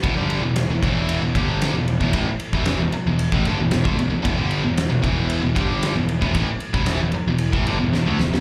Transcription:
0.03 0.16 E1 medium
0.03 0.15 E2 medium
0.03 0.15 B2 loud
0.03 kick loud
0.03 ride medium
0.16 0.41 G1 medium
0.16 0.42 G2 medium
0.16 0.42 D3 medium
0.16 0.42 G3 loud
0.30 ride medium
0.42 0.67 E1 medium
0.42 0.64 E2 medium
0.42 0.64 B2 medium
0.56 snare loud
0.56 ride medium
0.68 0.81 E1 medium
0.68 0.81 E2 medium
0.68 0.82 B2 medium
0.82 1.19 E1 medium
0.82 1.20 E2 medium
0.82 1.21 B2 loud
0.82 1.21 E3 loud
0.82 kick medium
0.82 ride medium
1.09 ride loud
1.21 1.34 E1 medium
1.21 1.35 E2 medium
1.21 1.35 B2 medium
1.35 1.71 G1 medium
1.35 1.74 G2 medium
1.35 1.74 D3 medium
1.35 1.74 G3 medium
1.35 kick loud
1.35 ride medium
1.62 snare medium
1.62 ride medium
1.74 1.99 E1 medium
1.74 1.95 E2 medium
1.74 1.96 B2 medium
1.88 ride medium
2.00 2.13 E1 medium
2.00 2.13 E2 medium
2.00 2.12 B2 medium
2.00 kick medium
2.13 2.26 A1 medium
2.13 2.26 A2 loud
2.13 2.26 E3 medium
2.13 kick loud
2.13 ride medium
2.40 ride medium
2.52 2.77 E1 medium
2.52 2.79 E2 medium
2.52 2.79 B2 medium
2.52 2.79 E3 loud
2.52 kick medium
2.65 snare loud
2.65 ride medium
2.78 2.91 E1 medium
2.78 2.92 E2 medium
2.78 2.93 B2 medium
2.92 muted picked electric bass stroke soft
2.92 muted distorted electric guitar stroke medium
2.92 ride medium
3.06 3.30 E1 medium
3.06 3.27 E2 medium
3.06 3.27 B2 medium
3.19 ride medium
3.32 3.44 A1 medium
3.32 3.45 A2 medium
3.32 3.45 E3 medium
3.32 kick medium
3.45 3.57 G1 medium
3.45 3.58 G2 medium
3.45 3.59 D3 loud
3.45 ride medium
3.59 3.71 E1 medium
3.59 3.71 E2 medium
3.59 3.71 B2 medium
3.71 3.85 E1 medium
3.71 3.85 E2 medium
3.71 3.83 B2 medium
3.71 snare loud
3.71 ride medium
3.84 3.97 D2 medium
3.84 3.97 D3 medium
3.84 3.97 A3 loud
3.84 kick loud
3.97 4.10 E1 medium
3.97 4.09 E2 medium
3.97 4.09 B2 medium
3.97 ride medium
4.10 4.24 E1 medium
4.10 4.22 E2 medium
4.10 4.22 B2 medium
4.23 4.37 E1 loud
4.23 4.36 E2 loud
4.23 4.36 B2 loud
4.23 kick loud
4.23 ride medium
4.37 4.62 G1 medium
4.37 4.63 G2 medium
4.37 4.63 D3 loud
4.37 4.63 G3 loud
4.51 ride medium
4.63 4.89 E1 medium
4.63 4.85 E2 medium
4.63 4.85 B2 medium
4.77 snare loud
4.77 ride medium
4.89 5.03 E1 medium
4.89 5.01 E2 medium
4.89 5.01 B2 medium
5.02 5.40 E1 medium
5.02 5.41 E2 medium
5.02 5.42 B2 loud
5.02 5.42 E3 medium
5.02 kick medium
5.02 ride medium
5.30 ride medium
5.42 5.56 E1 medium
5.42 5.55 E2 medium
5.42 5.55 B2 medium
5.55 5.93 G1 loud
5.55 5.94 G2 medium
5.55 5.94 D3 loud
5.55 5.95 G3 loud
5.55 kick loud
5.55 ride medium
5.83 snare loud
5.83 ride loud
5.95 6.20 E1 medium
5.95 6.16 E2 medium
5.95 6.16 B2 medium
6.09 ride medium
6.21 6.34 E1 medium
6.21 6.34 E2 medium
6.21 6.33 B2 loud
6.21 kick medium
6.34 6.47 A1 medium
6.34 6.47 A2 medium
6.34 6.47 E3 loud
6.34 kick medium
6.34 ride loud
6.60 ride medium
6.73 6.98 E1 medium
6.73 6.99 E2 medium
6.73 6.99 B2 medium
6.73 7.00 E3 medium
6.73 kick medium
6.86 snare loud
6.86 ride medium
7.00 7.13 E1 medium
7.00 7.13 E2 medium
7.00 7.14 B2 medium
7.12 muted distorted electric guitar stroke medium
7.12 ride medium
7.16 muted picked electric bass stroke soft
7.27 7.52 E1 medium
7.27 7.49 E2 medium
7.27 7.49 B2 medium
7.38 ride medium
7.52 7.66 A1 medium
7.52 7.65 A2 medium
7.52 7.66 E3 medium
7.52 kick loud
7.66 7.79 G1 medium
7.66 7.79 G2 medium
7.66 7.79 D3 medium
7.66 ride medium
7.79 7.93 E1 medium
7.79 7.92 E2 medium
7.79 7.92 B2 medium
7.93 8.06 E1 medium
7.93 8.06 E2 medium
7.93 8.05 B2 medium
7.93 snare medium
8.06 8.19 D2 medium
8.06 8.19 D3 medium
8.06 8.19 A3 medium
8.19 8.32 E1 medium
8.19 8.32 E2 medium
8.19 8.32 B2 medium
8.19 snare medium
8.33 8.40 E1 medium
8.33 8.40 E2 medium
8.33 8.40 B2 medium
8.33 snare medium

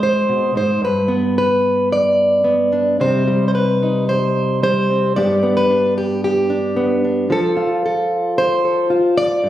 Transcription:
0.00 0.28 G#2 medium
0.00 0.79 G#3 medium
0.00 0.80 C4 soft
0.00 0.80 D#4 soft
0.00 0.56 C5 medium
0.29 0.55 B2 medium
0.55 0.81 G#2 medium
0.55 0.83 C5 medium
0.82 3.00 G2 medium
0.82 1.37 B4 medium
1.08 2.43 B3 medium
1.38 1.92 B4 medium
1.92 3.01 D5 medium
2.44 2.97 B3 medium
2.72 2.97 D4 soft
3.00 5.17 C3 medium
3.00 3.27 G3 soft
3.00 4.89 C4 soft
3.00 3.81 D#4 soft
3.00 3.47 C5 medium
3.27 4.62 G3 medium
3.48 3.54 C5 medium
3.55 4.09 B4 medium
3.83 5.14 D#4 soft
4.09 4.62 C5 medium
4.63 5.14 G3 medium
4.63 5.16 C5 loud
4.90 5.14 C4 soft
5.16 7.30 G2 medium
5.16 5.42 B3 soft
5.16 5.69 D4 soft
5.16 5.97 G4 soft
5.16 5.56 D5 loud
5.43 6.75 B3 medium
5.57 5.97 B4 loud
5.70 6.49 D4 soft
5.98 6.23 G4 medium
6.24 7.31 G4 medium
6.50 7.03 D4 soft
6.76 7.27 B3 medium
7.04 7.28 D4 soft
7.30 9.44 F3 medium
7.30 7.84 A4 medium
7.57 8.89 F4 medium
7.86 8.63 A4 medium
8.38 9.17 C5 loud
8.64 9.41 A4 medium
8.90 9.41 F4 medium
9.18 9.49 D5 loud
9.44 9.49 G2 medium

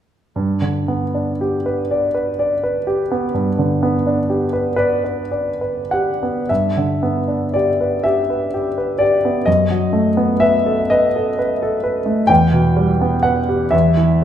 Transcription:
0.36 3.30 G2 soft
0.62 1.04 D3 soft
0.88 1.30 B3 soft
1.14 1.56 D4 soft
1.41 1.81 G4 soft
1.66 2.05 B4 soft
1.91 2.29 D5 soft
2.15 2.53 B4 soft
2.39 2.77 D5 soft
2.64 3.02 B4 soft
2.87 3.25 G4 soft
3.12 3.48 B3 soft
3.34 6.45 G2 soft
3.59 3.95 D3 soft
3.83 4.19 B3 soft
4.07 4.43 D4 soft
4.30 4.68 G4 soft
4.53 4.75 B4 soft
4.76 5.03 B4 medium
4.76 5.20 D5 soft
5.04 5.49 B4 soft
5.31 5.79 D5 soft
5.61 6.10 B4 soft
5.91 6.40 G4 soft
5.91 6.49 F#5 medium
6.23 6.50 B3 soft
6.49 9.44 G2 soft
6.49 7.54 E5 medium
6.77 7.18 D3 soft
7.03 7.44 B3 soft
7.28 7.69 D4 soft
7.54 7.96 G4 soft
7.54 8.05 D5 medium
7.81 8.20 B4 soft
8.04 8.44 G4 soft
8.04 9.00 E5 medium
8.30 8.68 B4 soft
8.54 8.92 G4 soft
8.78 9.15 B4 soft
8.99 9.38 G4 soft
8.99 9.46 D5 medium
9.25 9.47 B3 soft
9.46 12.26 F#2 soft
9.46 10.40 D#5 medium
9.70 10.07 F#3 soft
9.93 10.31 A3 soft
10.17 10.56 B3 soft
10.40 10.81 B4 soft
10.40 10.90 E5 medium
10.66 11.05 A4 soft
10.90 11.29 B4 soft
10.90 11.38 D#5 medium
11.16 11.53 A4 soft
11.39 11.75 B4 soft
11.62 11.98 A4 soft
11.84 12.20 B4 soft
12.06 12.29 A3 soft
12.27 13.69 E2 medium
12.27 13.23 G5 medium
12.52 12.91 B2 soft
12.77 13.15 G3 soft
13.01 13.39 B3 soft
13.23 13.63 B4 soft
13.23 13.72 F#5 medium
13.49 13.73 G4 soft
13.71 14.24 E2 soft
13.71 14.24 E5 medium
13.97 14.24 E3 soft

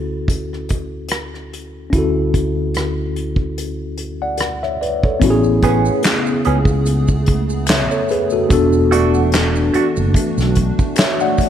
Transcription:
0.00 1.90 D2 medium
0.00 1.88 C#4 medium
0.00 1.90 E4 medium
0.00 1.91 F#4 medium
0.00 1.92 A4 medium
0.28 kick medium
0.28 closed hi-hat medium
0.53 cross-stick soft
0.69 kick medium
0.69 closed hi-hat medium
1.09 cross-stick loud
1.09 closed hi-hat medium
1.34 cross-stick soft
1.53 closed hi-hat soft
1.90 5.18 D2 medium
1.90 4.34 C#4 medium
1.90 4.35 E4 medium
1.90 kick medium
1.90 closed hi-hat medium
1.95 4.37 F#4 medium
1.95 3.97 A4 medium
2.34 kick medium
2.34 closed hi-hat medium
2.74 cross-stick loud
2.74 closed hi-hat medium
3.16 closed hi-hat medium
3.36 kick medium
3.58 closed hi-hat medium
3.98 closed hi-hat medium
4.22 4.61 D5 soft
4.22 4.60 F#5 medium
4.37 cross-stick medium
4.37 closed hi-hat medium
4.63 4.81 C#5 soft
4.63 4.80 E5 medium
4.63 cross-stick soft
4.81 5.02 B4 medium
4.81 5.02 D5 medium
4.81 closed hi-hat soft
5.03 5.43 A4 soft
5.03 5.43 C#5 medium
5.03 kick medium
5.20 5.89 A1 medium
5.20 8.48 C#3 medium
5.20 11.49 A3 medium
5.20 6.73 B3 medium
5.20 8.48 B3 medium
5.20 6.74 C#4 medium
5.20 6.75 E4 medium
5.20 8.48 G#4 medium
5.20 kick loud
5.20 closed hi-hat medium
5.20 maracas medium
5.24 5.30 F#4 medium
5.30 6.79 G#4 medium
5.44 maracas soft
5.62 6.01 B3 medium
5.62 6.01 C#4 medium
5.62 6.02 G#4 medium
5.62 kick medium
5.62 closed hi-hat medium
5.86 maracas soft
6.03 finger snap medium
6.03 snare loud
6.03 clap medium
6.03 closed hi-hat medium
6.03 maracas medium
6.26 maracas soft
6.45 7.87 C#2 medium
6.45 6.57 B3 medium
6.45 6.57 C#4 medium
6.45 6.58 G#4 medium
6.45 closed hi-hat medium
6.65 kick medium
6.65 maracas soft
6.86 closed hi-hat medium
6.86 maracas medium
7.08 kick medium
7.08 maracas medium
7.26 kick medium
7.26 closed hi-hat medium
7.50 maracas medium
7.67 7.90 C#5 soft
7.67 7.90 E5 medium
7.67 finger snap medium
7.67 snare loud
7.67 clap medium
7.67 closed hi-hat medium
7.67 maracas medium
7.91 8.09 A4 soft
7.91 8.09 C#5 medium
7.91 maracas soft
8.08 8.31 G#4 medium
8.08 8.31 B4 medium
8.08 closed hi-hat medium
8.08 maracas soft
8.30 8.50 F#4 medium
8.30 8.51 A4 medium
8.30 maracas medium
8.49 9.70 E1 loud
8.49 11.49 E3 medium
8.49 10.02 B3 medium
8.49 10.03 D4 medium
8.49 11.49 D4 medium
8.49 11.49 F#4 medium
8.49 10.03 F#4 medium
8.49 10.04 A4 medium
8.49 kick loud
8.49 closed hi-hat medium
8.49 maracas medium
8.73 maracas soft
8.91 9.29 A3 medium
8.91 9.30 D4 medium
8.91 9.30 F#4 loud
8.91 closed hi-hat medium
9.14 maracas soft
9.32 finger snap medium
9.32 snare loud
9.32 clap medium
9.32 closed hi-hat medium
9.32 maracas medium
9.56 maracas soft
9.74 9.85 A3 medium
9.74 9.86 D4 medium
9.74 9.86 F#4 medium
9.74 muted fretless electric bass stroke soft
9.74 closed hi-hat medium
9.97 10.12 F#1 loud
9.97 maracas soft
10.14 kick medium
10.14 closed hi-hat medium
10.14 maracas medium
10.38 10.71 B1 medium
10.38 snare soft
10.38 maracas medium
10.55 kick medium
10.55 closed hi-hat medium
10.79 kick medium
10.79 maracas soft
10.96 11.19 C#5 medium
10.96 11.19 E5 medium
10.96 finger snap medium
10.96 snare loud
10.96 clap medium
10.96 closed hi-hat medium
10.96 maracas medium
11.20 11.49 D5 medium
11.20 11.49 F#5 medium
11.20 maracas soft
11.38 kick medium
11.38 closed hi-hat medium
11.38 maracas soft

